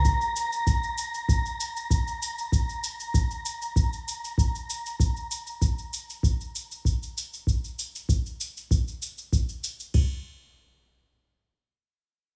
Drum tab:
CC |----------------|----------------|----------------|----------------|
SH |xxxxxxxxxxxxxxxx|xxxxxxxxxxxxxxxx|xxxxxxxxxxxxxxxx|xxxxxxxxxxxxxxxx|
BD |o---o---o---o---|o---o---o---o---|o---o---o---o---|o---o---o---o---|

CC |x---------------|
SH |----------------|
BD |o---------------|